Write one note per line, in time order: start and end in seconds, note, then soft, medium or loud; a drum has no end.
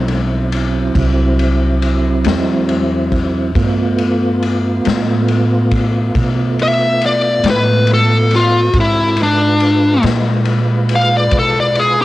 0.00 0.93 B1 medium
0.00 3.52 F#3 medium
0.00 3.52 C4 medium
0.00 3.52 E4 medium
0.08 ride medium
0.52 ride medium
0.95 2.22 C2 medium
0.95 kick medium
0.95 ride medium
1.39 ride medium
1.82 ride medium
2.24 3.52 E2 medium
2.24 snare loud
2.24 ride medium
2.69 ride medium
3.12 kick medium
3.12 ride medium
3.55 4.81 G2 medium
3.55 8.71 A3 medium
3.55 8.70 B3 medium
3.55 8.70 F4 medium
3.55 kick loud
3.55 ride medium
3.98 ride medium
4.42 ride medium
4.85 6.12 A2 medium
4.85 snare medium
4.85 ride medium
5.28 ride medium
5.71 kick medium
5.71 ride medium
6.15 7.41 B2 medium
6.15 kick loud
6.15 ride medium
6.59 7.03 E5 medium
6.59 ride medium
7.01 ride medium
7.06 7.46 D5 medium
7.44 8.70 A2 medium
7.44 snare loud
7.44 ride medium
7.50 7.90 B4 medium
7.87 ride medium
7.94 8.33 A4 medium
8.31 snare soft
8.31 ride medium
8.36 8.75 F4 medium
8.73 10.00 G#2 medium
8.73 9.17 C4 medium
8.73 9.17 F#4 medium
8.73 9.17 A4 medium
8.73 kick loud
8.73 ride medium
8.80 9.19 E4 medium
9.17 12.05 G#3 medium
9.17 12.05 F4 medium
9.17 12.05 B4 medium
9.17 ride medium
9.23 10.04 D4 medium
9.60 ride medium
10.03 11.29 A#2 loud
10.03 snare medium
10.03 ride medium
10.45 ride medium
10.89 ride medium
10.96 11.14 F5 medium
11.17 11.35 D5 medium
11.31 12.05 B2 medium
11.31 kick loud
11.31 ride medium
11.39 11.57 A4 medium
11.60 11.78 D5 medium
11.75 ride medium
11.79 11.99 G#4 medium
12.01 12.05 G4 medium